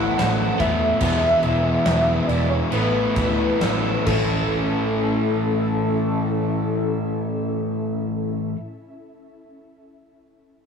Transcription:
0.00 0.57 A2 loud
0.00 0.18 E3 medium
0.00 0.60 E3 loud
0.00 2.07 E3 medium
0.00 0.17 A3 medium
0.00 0.18 A3 medium
0.00 0.57 A3 loud
0.00 0.19 B3 medium
0.00 0.20 E4 medium
0.00 1.43 E4 medium
0.00 0.17 A4 medium
0.00 0.20 A4 medium
0.00 0.98 B4 medium
0.00 4.02 E5 medium
0.00 0.61 F#5 loud
0.00 0.98 A5 medium
0.00 4.02 E6 medium
0.17 0.50 A1 loud
0.17 0.98 A2 medium
0.17 0.58 E3 medium
0.17 0.58 A3 medium
0.17 0.59 B3 medium
0.17 0.60 E4 medium
0.17 0.61 A4 medium
0.17 snare loud
0.17 crash medium
0.58 0.91 E2 medium
0.58 1.00 A2 medium
0.58 0.81 E3 medium
0.58 0.80 A3 medium
0.58 0.81 B3 medium
0.58 0.81 E4 medium
0.58 2.28 E5 loud
0.58 kick loud
0.58 crash medium
0.62 1.00 A4 medium
0.81 muted overdriven electric guitar stroke medium
1.00 1.33 E1 loud
1.00 1.84 E2 medium
1.00 1.84 B2 loud
1.00 1.64 E3 medium
1.00 1.63 G#3 loud
1.00 1.62 B3 loud
1.00 1.62 E4 loud
1.00 1.44 G#4 loud
1.00 2.71 B4 medium
1.00 2.71 G#5 medium
1.00 kick loud
1.00 crash medium
1.42 1.75 E1 loud
1.42 1.84 G#3 medium
1.42 1.64 B3 medium
1.42 1.63 E4 loud
1.42 1.62 G#4 medium
1.42 crash medium
1.63 1.85 E3 medium
1.63 1.86 G#3 medium
1.63 1.86 B3 medium
1.63 1.87 E4 medium
1.63 1.86 G#4 medium
1.85 2.17 E1 medium
1.85 2.69 E2 loud
1.85 2.69 B2 loud
1.85 2.27 E3 loud
1.85 2.29 G#3 loud
1.85 2.29 B3 loud
1.85 2.30 E4 loud
1.85 2.29 G#4 loud
1.85 snare loud
1.85 crash medium
2.27 2.60 E1 medium
2.27 2.50 E3 medium
2.27 2.50 G#3 medium
2.27 2.50 B3 medium
2.27 2.48 G#4 medium
2.27 2.51 D5 medium
2.27 crash medium
2.31 2.50 E4 medium
2.49 2.71 B3 medium
2.49 2.70 E4 medium
2.49 2.69 G#4 medium
2.49 2.74 C#5 medium
2.49 muted overdriven electric guitar stroke soft
2.72 3.05 A1 loud
2.72 3.39 A2 loud
2.72 3.15 E3 medium
2.72 2.96 A3 loud
2.72 2.95 B3 loud
2.72 2.94 E4 loud
2.72 2.92 A4 loud
2.72 4.05 B4 medium
2.72 4.06 B4 medium
2.72 4.05 A5 medium
2.72 crash medium
2.93 3.16 A3 medium
2.93 3.17 B3 medium
2.93 3.18 E4 medium
2.93 3.17 A4 medium
3.16 3.50 D2 medium
3.16 3.59 E3 medium
3.16 3.39 A3 loud
3.16 3.38 B3 medium
3.16 3.36 E4 medium
3.16 3.37 A4 medium
3.16 kick loud
3.16 crash medium
3.38 3.60 A3 medium
3.38 3.60 B3 medium
3.38 3.61 E4 medium
3.38 3.61 A4 medium
3.59 3.94 A1 loud
3.59 4.05 A2 medium
3.59 4.06 E3 medium
3.59 4.06 A3 medium
3.59 4.06 B3 medium
3.59 4.07 E4 medium
3.59 4.07 A4 loud
3.59 snare loud
3.59 crash medium
4.06 8.51 A1 loud
4.06 8.53 A2 medium
4.06 8.54 E3 loud
4.06 8.55 A3 loud
4.06 8.49 C#4 medium
4.06 8.56 C#4 loud
4.06 8.50 E4 medium
4.06 8.50 A4 medium
4.06 8.49 E5 medium
4.06 kick loud
4.06 crash loud
4.10 8.57 E4 loud
4.10 8.57 A4 loud

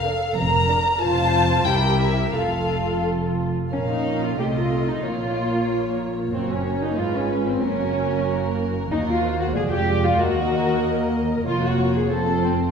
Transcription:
0.00 0.24 F1 medium
0.00 0.24 F2 medium
0.00 0.36 F5 medium
0.05 0.29 D4 medium
0.05 0.38 A4 medium
0.05 0.29 A#4 medium
0.37 0.88 F1 medium
0.37 0.88 F2 medium
0.37 1.02 A#4 medium
0.37 1.00 A#5 medium
0.69 0.93 D4 medium
0.69 0.94 A#4 medium
1.01 1.63 F1 medium
1.01 1.63 F2 medium
1.01 1.63 F4 medium
1.01 1.67 F4 medium
1.01 1.63 C5 medium
1.01 1.65 A5 loud
1.66 2.34 C2 medium
1.66 2.35 E4 medium
1.66 2.33 G4 medium
1.66 2.33 A#4 medium
1.66 2.00 G5 medium
1.99 2.33 E5 medium
2.33 3.49 F1 medium
2.33 3.49 F2 soft
2.33 3.49 F4 medium
2.33 3.36 A4 medium
2.33 3.51 A4 medium
2.33 3.03 F5 medium
3.71 4.33 A#1 medium
3.71 4.34 A#2 soft
3.71 4.34 C#4 soft
3.71 3.79 C#4 medium
3.71 4.33 A#4 soft
3.71 4.33 F5 medium
3.89 4.21 D#4 medium
4.22 4.38 F4 medium
4.37 5.03 C2 medium
4.37 5.03 C3 medium
4.37 5.03 A3 soft
4.37 4.45 G4 medium
4.37 5.03 A4 soft
4.37 5.03 D#5 soft
4.54 4.86 F4 medium
4.88 5.03 D#4 medium
5.03 6.30 A#1 medium
5.03 6.30 A#2 medium
5.03 6.30 A#3 medium
5.03 6.30 F4 medium
5.03 6.01 F4 medium
5.03 6.32 C#5 medium
6.32 6.96 F#1 medium
6.32 6.96 F#2 soft
6.32 6.96 A#3 soft
6.32 6.48 C4 medium
6.32 6.98 F#4 soft
6.32 6.97 C#5 soft
6.50 6.82 C#4 medium
6.82 6.98 D#4 medium
6.97 7.61 G#1 soft
6.97 7.61 G#2 medium
6.97 7.63 G#3 soft
6.97 7.61 F4 soft
6.97 7.14 F4 medium
6.97 7.63 B4 soft
7.14 7.46 C#4 medium
7.47 7.63 C4 medium
7.62 8.88 F#1 medium
7.62 8.88 F#2 soft
7.62 8.89 A#3 medium
7.62 8.59 C#4 medium
7.62 8.89 F#4 medium
7.62 8.88 A#4 medium
8.90 9.55 D#2 medium
8.90 9.53 A#3 medium
8.90 8.97 D#4 medium
8.90 9.53 F#4 medium
8.90 9.22 A#4 medium
9.08 9.39 F4 medium
9.24 9.55 C5 medium
9.40 9.46 F#4 medium
9.54 10.19 F1 medium
9.54 10.18 F2 medium
9.54 10.19 G#3 medium
9.54 10.19 F4 medium
9.54 9.62 G#4 medium
9.54 10.19 D5 medium
9.71 10.03 G4 medium
10.05 10.20 F4 medium
10.18 11.43 D#2 medium
10.18 11.45 A#3 medium
10.18 11.14 F#4 medium
10.18 11.43 A#4 medium
10.18 11.46 D#5 medium
11.46 12.71 F1 medium
11.46 12.71 F2 medium
11.46 12.10 A#3 medium
11.46 12.10 F4 medium
11.46 11.61 F4 medium
11.46 12.10 C#5 medium
11.63 11.95 F#4 medium
11.95 12.11 G#4 medium
12.11 12.71 C4 soft
12.11 12.71 F4 soft
12.11 12.43 A4 medium
12.11 12.71 C5 soft
12.43 12.71 C4 medium

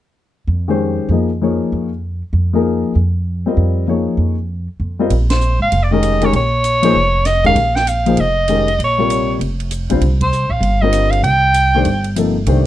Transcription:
0.47 0.97 F2 medium
0.68 1.08 D#3 medium
0.68 1.08 G#3 medium
0.68 1.08 C#4 medium
0.68 1.09 G4 soft
0.68 1.09 C5 medium
1.09 1.58 F2 medium
1.09 1.28 F3 soft
1.09 1.28 A#3 soft
1.09 1.29 D#4 soft
1.09 1.29 G#4 soft
1.13 1.29 D#5 medium
1.42 1.88 F3 medium
1.42 1.88 A#3 soft
1.42 1.88 D#4 soft
1.42 1.88 G#4 soft
1.42 1.89 C#5 medium
1.72 2.21 F2 medium
2.33 2.82 F2 medium
2.53 2.93 F3 medium
2.53 2.93 A#3 medium
2.53 2.94 D#4 medium
2.53 2.94 G#4 medium
2.53 2.94 A#4 medium
2.95 3.44 F2 medium
3.46 3.86 G3 soft
3.46 3.85 C4 soft
3.46 3.86 F4 soft
3.46 3.86 A#4 soft
3.46 3.86 D#5 medium
3.57 4.06 F2 medium
3.88 4.34 F3 soft
3.88 4.34 A#3 soft
3.88 4.34 D#4 soft
3.88 4.35 G#4 soft
3.88 4.35 C#5 medium
4.17 4.67 F2 medium
4.80 5.08 F2 medium
4.99 5.11 G3 medium
4.99 5.11 C4 medium
4.99 5.11 F4 medium
4.99 5.11 A#4 medium
4.99 5.11 D#5 medium
5.10 5.57 A#1 medium
5.10 ride soft
5.30 5.59 C5 medium
5.30 snare medium
5.30 ride medium
5.41 hi-hat pedal medium
5.59 5.70 G#1 medium
5.59 5.85 F5 medium
5.72 6.30 F1 medium
5.72 ride soft
5.83 5.94 D5 medium
5.91 6.20 D#3 medium
5.91 6.20 G#3 medium
5.91 6.20 C#4 medium
5.91 6.21 G4 soft
5.91 6.21 A#4 medium
5.91 6.27 D#5 medium
6.03 hi-hat pedal soft
6.03 ride medium
6.21 6.32 D#3 medium
6.21 6.32 G#3 medium
6.21 6.32 C#4 medium
6.21 6.32 G4 medium
6.21 6.33 A#4 medium
6.21 ride soft
6.25 6.35 C#5 medium
6.33 6.92 A#1 medium
6.33 7.27 C#5 medium
6.33 ride medium
6.64 hi-hat pedal medium
6.64 ride medium
6.82 6.93 F3 medium
6.82 6.94 A#3 medium
6.82 6.94 D#4 medium
6.82 6.94 G#4 medium
6.82 6.94 C5 medium
6.82 ride medium
6.94 7.52 F1 medium
7.25 7.45 D#5 medium
7.25 snare soft
7.25 hi-hat pedal medium
7.25 ride medium
7.44 7.55 D#3 medium
7.44 7.55 G#3 medium
7.44 7.55 C#4 medium
7.44 7.55 G4 medium
7.44 7.56 A#4 medium
7.44 7.77 F5 loud
7.44 kick medium
7.44 ride soft
7.55 8.14 A#1 medium
7.55 ride medium
7.75 7.90 G5 medium
7.75 snare soft
7.87 8.22 F5 medium
7.87 hi-hat pedal medium
7.87 ride medium
8.06 8.16 F3 medium
8.06 8.16 A#3 medium
8.06 8.17 D#4 soft
8.06 8.17 G#4 medium
8.06 8.17 C5 medium
8.06 ride soft
8.17 8.76 F1 medium
8.17 8.80 D#5 medium
8.17 ride medium
8.48 8.66 D#3 soft
8.48 8.66 G#3 soft
8.48 8.66 C#4 soft
8.48 8.67 G4 soft
8.48 8.67 A#4 medium
8.48 hi-hat pedal medium
8.48 ride medium
8.68 ride soft
8.79 9.37 A#1 medium
8.79 ride soft
8.84 9.39 C#5 medium
8.98 9.38 C3 medium
8.98 9.38 G3 medium
8.98 9.38 F4 medium
8.98 9.38 A#4 medium
8.98 9.39 C#5 medium
9.10 hi-hat pedal soft
9.10 ride medium
9.39 9.86 F1 medium
9.39 ride medium
9.60 ride soft
9.71 hi-hat pedal medium
9.71 ride medium
9.90 10.00 A#1 medium
9.90 10.00 D3 medium
9.90 10.00 G3 medium
9.90 10.01 C4 medium
9.90 10.01 F4 medium
9.90 10.01 C5 medium
9.90 ride soft
10.01 10.48 C2 medium
10.01 ride soft
10.21 10.53 C5 medium
10.21 kick medium
10.21 ride medium
10.32 hi-hat pedal medium
10.49 10.60 A#1 medium
10.49 10.83 F5 medium
10.61 11.20 G1 medium
10.61 ride soft
10.82 11.22 D3 medium
10.82 11.22 G3 medium
10.82 11.22 C4 medium
10.82 11.22 F4 medium
10.82 11.23 A#4 medium
10.82 11.12 D#5 medium
10.93 hi-hat pedal medium
10.93 ride medium
11.10 11.23 F5 medium
11.10 ride soft
11.23 11.82 C2 medium
11.23 12.12 G5 loud
11.23 ride soft
11.54 hi-hat pedal medium
11.54 ride medium
11.75 11.85 D#3 medium
11.75 11.85 A3 medium
11.75 11.85 D4 medium
11.75 11.85 G4 medium
11.75 11.85 C5 medium
11.85 12.44 G1 medium
11.85 ride medium
12.04 ride soft
12.16 12.34 C3 medium
12.16 12.34 F3 soft
12.16 12.34 A#3 soft
12.16 12.34 D#4 soft
12.16 12.35 A4 medium
12.16 hi-hat pedal medium
12.16 ride medium
12.46 12.67 C2 medium
12.46 12.67 D#3 medium
12.46 12.67 A3 medium
12.46 12.67 D4 medium
12.46 12.67 G4 medium
12.46 12.67 C5 medium
12.46 ride medium

